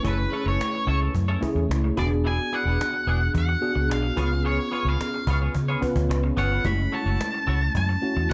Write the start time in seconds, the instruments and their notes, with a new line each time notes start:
Already playing: tine electric piano A3 C#4 E4 B4
0.03 fingered electric bass F#1, tine electric piano A3 C#4 E4 G#4, clean electric guitar C#4 E4 A4 C#5, cajon bass
0.07 lead electric guitar B4
0.18 muted clean electric guitar stroke, cajon slap
0.32 clean electric guitar C#4 E4 A4 C#5, cajon slap
0.46 fingered electric bass F#1, clean electric guitar C#4 E4 A4 C#5, lead electric guitar C#5, cajon slap
0.60 muted clean electric guitar stroke, cajon slap
0.73 muted clean electric guitar stroke, cajon slap
0.87 fingered electric bass C#2, clean electric guitar C#4 E4 A4 E5, cajon slap
1.01 clean electric guitar C#4 E4 A4 C#5, cajon slap
1.14 fingered electric bass F#2, muted clean electric guitar stroke, cajon bass, cajon slap
1.28 clean electric guitar C#4 E4 A4 C#5, cajon slap
1.41 tine electric piano A3 C#4 E4 G#4, muted clean electric guitar stroke, cajon bass
1.55 fingered electric bass E2, muted clean electric guitar stroke, cajon slap
1.69 fingered electric bass C#2, cajon slap
1.84 muted clean electric guitar stroke, cajon slap
1.96 fingered electric bass E1, tine electric piano B3 D4 F#4 G#4, clean electric guitar B3 E4 G#4 D5, lead electric guitar D5, cajon bass
2.11 muted clean electric guitar stroke, cajon slap
2.24 clean electric guitar B3 E4 G#4 D5, lead electric guitar G#5, cajon slap
2.38 muted clean electric guitar stroke, cajon slap
2.52 clean electric guitar B3 E4 G#4 D5, lead electric guitar F#5, cajon slap
2.65 fingered electric bass E1, clean electric guitar B3 E4 G#4 D5, cajon slap
2.81 cajon slap
2.94 muted clean electric guitar stroke, cajon slap
3.07 fingered electric bass E1, clean electric guitar B3 E4 G#4 D5, cajon slap
3.20 muted clean electric guitar stroke, cajon slap
3.34 fingered electric bass E2, muted clean electric guitar stroke, cajon bass, cajon slap
3.38 lead electric guitar F#5
3.49 muted clean electric guitar stroke, cajon slap
3.61 tine electric piano B3 D4 F#4 G#4, cajon slap
3.75 fingered electric bass C#2, muted clean electric guitar stroke, cajon slap
3.89 fingered electric bass B1, lead electric guitar F5, muted clean electric guitar stroke, cajon slap
4.03 muted clean electric guitar stroke, cajon slap
4.16 fingered electric bass C#2, tine electric piano B3 C#4 F4 G#4, clean electric guitar B3 F4 G#4 C#5, cajon bass
4.31 muted clean electric guitar stroke, cajon slap
4.45 clean electric guitar B3 F4 G#4 C#5, lead electric guitar C#5, cajon slap
4.59 muted clean electric guitar stroke, cajon slap
4.71 clean electric guitar B3 F4 G#4 C#5, cajon slap
4.85 fingered electric bass C#2, clean electric guitar B3 F4 G#4 C#5, lead electric guitar F5, cajon slap
5.01 muted clean electric guitar stroke, cajon slap
5.14 muted clean electric guitar stroke, cajon slap
5.27 fingered electric bass C#2, clean electric guitar B3 F4 G#4 C#5, cajon bass
5.42 clean electric guitar B3 F4 G#4 C#5, cajon slap
5.54 fingered electric bass C#3, muted clean electric guitar stroke, cajon bass, cajon slap
5.68 clean electric guitar B3 F4 G#4 C#5, cajon slap
5.81 tine electric piano B3 C#4 F4 B4, muted clean electric guitar stroke, cajon bass
5.96 fingered electric bass D2, muted clean electric guitar stroke, cajon bass, cajon slap
6.09 fingered electric bass C#2, muted clean electric guitar stroke, cajon slap
6.23 muted clean electric guitar stroke, cajon slap
6.37 fingered electric bass G1, clean electric guitar B3 F4 G#4 C#5, lead electric guitar F#5, cajon bass
6.51 clean electric guitar B3 F4 G#4 C#5, cajon slap
6.64 fingered electric bass F#1, tine electric piano A3 C#4 E4 G4, clean electric guitar A3 E4 F#4 C#5, lead electric guitar B5, cajon bass
6.71 tine electric piano G#3
6.78 muted clean electric guitar stroke, cajon slap
6.92 clean electric guitar A3 E4 F#4 C#5, lead electric guitar A5, cajon slap
7.06 fingered electric bass F#1, clean electric guitar A3 E4 F#4 C#5, cajon slap
7.21 cajon slap
7.34 muted clean electric guitar stroke, cajon slap
7.47 fingered electric bass C#2, clean electric guitar A3 E4 F#4 C#5, cajon slap
7.62 muted clean electric guitar stroke, cajon slap
7.75 fingered electric bass F#2, lead electric guitar A5, muted clean electric guitar stroke, cajon bass, cajon slap
7.89 muted clean electric guitar stroke, cajon slap
8.01 tine electric piano A3 C#4 E4 F#4, cajon slap
8.17 fingered electric bass E2, muted clean electric guitar stroke, cajon slap
8.30 lead electric guitar F#5